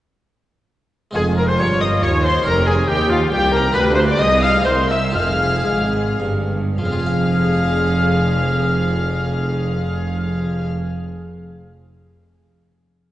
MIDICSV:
0, 0, Header, 1, 8, 480
1, 0, Start_track
1, 0, Key_signature, -4, "minor"
1, 0, Tempo, 436364
1, 1267, Time_signature, 3, 2, 24, 8
1, 4623, Tempo, 484262
1, 6063, Tempo, 562324
1, 7023, Tempo, 601202
1, 12083, End_track
2, 0, Start_track
2, 0, Title_t, "Violin section"
2, 0, Program_c, 0, 48
2, 1272, Note_on_c, 0, 80, 107
2, 1494, Note_off_c, 0, 80, 0
2, 1509, Note_on_c, 0, 82, 98
2, 1626, Note_off_c, 0, 82, 0
2, 1640, Note_on_c, 0, 84, 102
2, 1751, Note_off_c, 0, 84, 0
2, 1754, Note_on_c, 0, 85, 105
2, 1842, Note_off_c, 0, 85, 0
2, 1996, Note_on_c, 0, 87, 107
2, 2084, Note_off_c, 0, 87, 0
2, 2243, Note_on_c, 0, 85, 110
2, 2331, Note_off_c, 0, 85, 0
2, 2471, Note_on_c, 0, 84, 113
2, 2703, Note_off_c, 0, 84, 0
2, 2703, Note_on_c, 0, 82, 110
2, 2938, Note_off_c, 0, 82, 0
2, 2943, Note_on_c, 0, 80, 107
2, 3173, Note_on_c, 0, 79, 117
2, 3177, Note_off_c, 0, 80, 0
2, 3411, Note_off_c, 0, 79, 0
2, 3413, Note_on_c, 0, 77, 108
2, 3651, Note_on_c, 0, 79, 123
2, 3654, Note_off_c, 0, 77, 0
2, 3888, Note_off_c, 0, 79, 0
2, 3897, Note_on_c, 0, 82, 127
2, 4127, Note_on_c, 0, 83, 121
2, 4136, Note_off_c, 0, 82, 0
2, 4215, Note_off_c, 0, 83, 0
2, 4377, Note_on_c, 0, 84, 106
2, 4498, Note_off_c, 0, 84, 0
2, 4521, Note_on_c, 0, 86, 118
2, 4620, Note_on_c, 0, 87, 120
2, 4633, Note_off_c, 0, 86, 0
2, 4848, Note_off_c, 0, 87, 0
2, 4852, Note_on_c, 0, 89, 113
2, 5081, Note_off_c, 0, 89, 0
2, 5082, Note_on_c, 0, 84, 113
2, 5313, Note_off_c, 0, 84, 0
2, 5318, Note_on_c, 0, 88, 110
2, 5557, Note_on_c, 0, 89, 112
2, 5560, Note_off_c, 0, 88, 0
2, 6507, Note_off_c, 0, 89, 0
2, 7029, Note_on_c, 0, 89, 94
2, 10146, Note_off_c, 0, 89, 0
2, 12083, End_track
3, 0, Start_track
3, 0, Title_t, "Oboe"
3, 0, Program_c, 1, 68
3, 1269, Note_on_c, 1, 68, 87
3, 1377, Note_off_c, 1, 68, 0
3, 1510, Note_on_c, 1, 70, 84
3, 1633, Note_on_c, 1, 72, 82
3, 1649, Note_off_c, 1, 70, 0
3, 1755, Note_on_c, 1, 73, 102
3, 1772, Note_off_c, 1, 72, 0
3, 1987, Note_off_c, 1, 73, 0
3, 1993, Note_on_c, 1, 75, 96
3, 2235, Note_on_c, 1, 73, 111
3, 2252, Note_off_c, 1, 75, 0
3, 2449, Note_off_c, 1, 73, 0
3, 2455, Note_on_c, 1, 72, 82
3, 2686, Note_off_c, 1, 72, 0
3, 2693, Note_on_c, 1, 70, 100
3, 2938, Note_on_c, 1, 68, 96
3, 2955, Note_off_c, 1, 70, 0
3, 3170, Note_on_c, 1, 67, 114
3, 3187, Note_off_c, 1, 68, 0
3, 3406, Note_on_c, 1, 65, 92
3, 3422, Note_off_c, 1, 67, 0
3, 3651, Note_off_c, 1, 65, 0
3, 3657, Note_on_c, 1, 67, 103
3, 3885, Note_off_c, 1, 67, 0
3, 3891, Note_on_c, 1, 70, 95
3, 4119, Note_off_c, 1, 70, 0
3, 4125, Note_on_c, 1, 71, 112
3, 4368, Note_off_c, 1, 71, 0
3, 4377, Note_on_c, 1, 72, 100
3, 4433, Note_off_c, 1, 72, 0
3, 4501, Note_on_c, 1, 74, 88
3, 4557, Note_off_c, 1, 74, 0
3, 4630, Note_on_c, 1, 75, 121
3, 4846, Note_on_c, 1, 77, 106
3, 4861, Note_off_c, 1, 75, 0
3, 5070, Note_off_c, 1, 77, 0
3, 5076, Note_on_c, 1, 72, 110
3, 5305, Note_off_c, 1, 72, 0
3, 5311, Note_on_c, 1, 76, 90
3, 5549, Note_off_c, 1, 76, 0
3, 5555, Note_on_c, 1, 77, 101
3, 6506, Note_off_c, 1, 77, 0
3, 7022, Note_on_c, 1, 77, 88
3, 10139, Note_off_c, 1, 77, 0
3, 12083, End_track
4, 0, Start_track
4, 0, Title_t, "Violin section"
4, 0, Program_c, 2, 48
4, 1268, Note_on_c, 2, 68, 103
4, 1356, Note_off_c, 2, 68, 0
4, 1520, Note_on_c, 2, 70, 86
4, 1628, Note_on_c, 2, 72, 87
4, 1632, Note_off_c, 2, 70, 0
4, 1745, Note_off_c, 2, 72, 0
4, 1754, Note_on_c, 2, 73, 96
4, 1988, Note_on_c, 2, 75, 87
4, 1990, Note_off_c, 2, 73, 0
4, 2225, Note_on_c, 2, 73, 98
4, 2227, Note_off_c, 2, 75, 0
4, 2460, Note_off_c, 2, 73, 0
4, 2467, Note_on_c, 2, 72, 94
4, 2705, Note_off_c, 2, 72, 0
4, 2709, Note_on_c, 2, 70, 112
4, 2936, Note_on_c, 2, 68, 98
4, 2941, Note_off_c, 2, 70, 0
4, 3024, Note_off_c, 2, 68, 0
4, 3176, Note_on_c, 2, 67, 93
4, 3412, Note_off_c, 2, 67, 0
4, 3412, Note_on_c, 2, 65, 87
4, 3649, Note_off_c, 2, 65, 0
4, 3650, Note_on_c, 2, 67, 102
4, 3875, Note_on_c, 2, 70, 99
4, 3887, Note_off_c, 2, 67, 0
4, 4123, Note_on_c, 2, 71, 114
4, 4126, Note_off_c, 2, 70, 0
4, 4356, Note_on_c, 2, 72, 96
4, 4367, Note_off_c, 2, 71, 0
4, 4409, Note_off_c, 2, 72, 0
4, 4480, Note_on_c, 2, 74, 96
4, 4612, Note_off_c, 2, 74, 0
4, 4613, Note_on_c, 2, 75, 108
4, 4839, Note_on_c, 2, 77, 101
4, 4845, Note_off_c, 2, 75, 0
4, 5070, Note_off_c, 2, 77, 0
4, 5070, Note_on_c, 2, 72, 102
4, 5149, Note_off_c, 2, 72, 0
4, 5313, Note_on_c, 2, 76, 95
4, 5393, Note_off_c, 2, 76, 0
4, 5548, Note_on_c, 2, 77, 101
4, 6504, Note_off_c, 2, 77, 0
4, 7024, Note_on_c, 2, 77, 92
4, 10141, Note_off_c, 2, 77, 0
4, 12083, End_track
5, 0, Start_track
5, 0, Title_t, "Viola section"
5, 0, Program_c, 3, 48
5, 1270, Note_on_c, 3, 65, 83
5, 2662, Note_off_c, 3, 65, 0
5, 2707, Note_on_c, 3, 67, 81
5, 3168, Note_off_c, 3, 67, 0
5, 3181, Note_on_c, 3, 67, 79
5, 3643, Note_off_c, 3, 67, 0
5, 3656, Note_on_c, 3, 67, 82
5, 4118, Note_off_c, 3, 67, 0
5, 4131, Note_on_c, 3, 67, 86
5, 4613, Note_off_c, 3, 67, 0
5, 4619, Note_on_c, 3, 68, 80
5, 5069, Note_off_c, 3, 68, 0
5, 5078, Note_on_c, 3, 70, 73
5, 5556, Note_on_c, 3, 68, 80
5, 5558, Note_off_c, 3, 70, 0
5, 6790, Note_off_c, 3, 68, 0
5, 7027, Note_on_c, 3, 68, 82
5, 10144, Note_off_c, 3, 68, 0
5, 12083, End_track
6, 0, Start_track
6, 0, Title_t, "Harpsichord"
6, 0, Program_c, 4, 6
6, 1220, Note_on_c, 4, 56, 56
6, 1238, Note_on_c, 4, 60, 61
6, 1252, Note_on_c, 4, 65, 53
6, 1269, Note_on_c, 4, 41, 64
6, 1704, Note_off_c, 4, 41, 0
6, 1709, Note_off_c, 4, 56, 0
6, 1718, Note_off_c, 4, 60, 0
6, 1742, Note_on_c, 4, 43, 66
6, 2180, Note_off_c, 4, 43, 0
6, 2227, Note_on_c, 4, 39, 65
6, 2654, Note_off_c, 4, 65, 0
6, 2661, Note_off_c, 4, 39, 0
6, 2667, Note_on_c, 4, 61, 61
6, 2684, Note_on_c, 4, 67, 65
6, 2703, Note_on_c, 4, 41, 68
6, 3137, Note_off_c, 4, 41, 0
6, 3185, Note_on_c, 4, 39, 75
6, 3615, Note_off_c, 4, 39, 0
6, 3658, Note_on_c, 4, 36, 76
6, 4073, Note_off_c, 4, 61, 0
6, 4082, Note_off_c, 4, 67, 0
6, 4092, Note_off_c, 4, 36, 0
6, 4101, Note_on_c, 4, 65, 69
6, 4118, Note_on_c, 4, 67, 74
6, 4136, Note_on_c, 4, 38, 77
6, 4581, Note_off_c, 4, 38, 0
6, 4581, Note_on_c, 4, 60, 67
6, 4582, Note_off_c, 4, 65, 0
6, 4595, Note_on_c, 4, 65, 68
6, 4601, Note_off_c, 4, 67, 0
6, 4609, Note_on_c, 4, 68, 68
6, 4631, Note_on_c, 4, 36, 75
6, 5023, Note_off_c, 4, 60, 0
6, 5035, Note_on_c, 4, 60, 68
6, 5044, Note_off_c, 4, 36, 0
6, 5051, Note_on_c, 4, 64, 66
6, 5053, Note_off_c, 4, 65, 0
6, 5060, Note_off_c, 4, 68, 0
6, 5067, Note_on_c, 4, 70, 66
6, 5080, Note_on_c, 4, 36, 71
6, 5502, Note_off_c, 4, 60, 0
6, 5514, Note_on_c, 4, 60, 60
6, 5520, Note_off_c, 4, 36, 0
6, 5528, Note_on_c, 4, 65, 56
6, 5530, Note_off_c, 4, 64, 0
6, 5538, Note_off_c, 4, 70, 0
6, 5543, Note_on_c, 4, 68, 57
6, 5558, Note_on_c, 4, 41, 66
6, 6024, Note_off_c, 4, 41, 0
6, 6060, Note_on_c, 4, 44, 64
6, 6480, Note_off_c, 4, 60, 0
6, 6490, Note_off_c, 4, 44, 0
6, 6526, Note_on_c, 4, 43, 61
6, 6977, Note_off_c, 4, 65, 0
6, 6983, Note_off_c, 4, 68, 0
6, 6990, Note_off_c, 4, 43, 0
6, 7026, Note_on_c, 4, 53, 71
6, 7081, Note_on_c, 4, 60, 63
6, 7137, Note_on_c, 4, 65, 66
6, 7194, Note_on_c, 4, 68, 66
6, 7249, Note_on_c, 4, 77, 69
6, 10142, Note_off_c, 4, 53, 0
6, 10198, Note_off_c, 4, 60, 0
6, 10254, Note_off_c, 4, 65, 0
6, 10311, Note_off_c, 4, 68, 0
6, 10366, Note_off_c, 4, 77, 0
6, 12083, End_track
7, 0, Start_track
7, 0, Title_t, "Cello section"
7, 0, Program_c, 5, 48
7, 1264, Note_on_c, 5, 41, 87
7, 1712, Note_off_c, 5, 41, 0
7, 1745, Note_on_c, 5, 43, 82
7, 2222, Note_on_c, 5, 39, 87
7, 2225, Note_off_c, 5, 43, 0
7, 2693, Note_off_c, 5, 39, 0
7, 2701, Note_on_c, 5, 41, 95
7, 3171, Note_off_c, 5, 41, 0
7, 3177, Note_on_c, 5, 39, 89
7, 3646, Note_off_c, 5, 39, 0
7, 3651, Note_on_c, 5, 36, 96
7, 4123, Note_off_c, 5, 36, 0
7, 4128, Note_on_c, 5, 38, 106
7, 4611, Note_off_c, 5, 38, 0
7, 4617, Note_on_c, 5, 36, 92
7, 5063, Note_off_c, 5, 36, 0
7, 5075, Note_on_c, 5, 36, 87
7, 5547, Note_off_c, 5, 36, 0
7, 5557, Note_on_c, 5, 41, 85
7, 6056, Note_on_c, 5, 44, 78
7, 6063, Note_off_c, 5, 41, 0
7, 6514, Note_off_c, 5, 44, 0
7, 6524, Note_on_c, 5, 43, 81
7, 7013, Note_off_c, 5, 43, 0
7, 7024, Note_on_c, 5, 41, 93
7, 10140, Note_off_c, 5, 41, 0
7, 12083, End_track
8, 0, Start_track
8, 0, Title_t, "Double bass section"
8, 0, Program_c, 6, 48
8, 1267, Note_on_c, 6, 29, 82
8, 1714, Note_off_c, 6, 29, 0
8, 1745, Note_on_c, 6, 31, 84
8, 2225, Note_off_c, 6, 31, 0
8, 2225, Note_on_c, 6, 39, 93
8, 2694, Note_off_c, 6, 39, 0
8, 2705, Note_on_c, 6, 29, 95
8, 3173, Note_off_c, 6, 29, 0
8, 3184, Note_on_c, 6, 39, 92
8, 3649, Note_off_c, 6, 39, 0
8, 3657, Note_on_c, 6, 36, 106
8, 4126, Note_off_c, 6, 36, 0
8, 4133, Note_on_c, 6, 38, 96
8, 4614, Note_off_c, 6, 38, 0
8, 4628, Note_on_c, 6, 36, 93
8, 5069, Note_off_c, 6, 36, 0
8, 5081, Note_on_c, 6, 36, 85
8, 5550, Note_off_c, 6, 36, 0
8, 5561, Note_on_c, 6, 29, 79
8, 6065, Note_off_c, 6, 29, 0
8, 6065, Note_on_c, 6, 32, 84
8, 6518, Note_off_c, 6, 32, 0
8, 6528, Note_on_c, 6, 31, 82
8, 7015, Note_off_c, 6, 31, 0
8, 7022, Note_on_c, 6, 29, 93
8, 10139, Note_off_c, 6, 29, 0
8, 12083, End_track
0, 0, End_of_file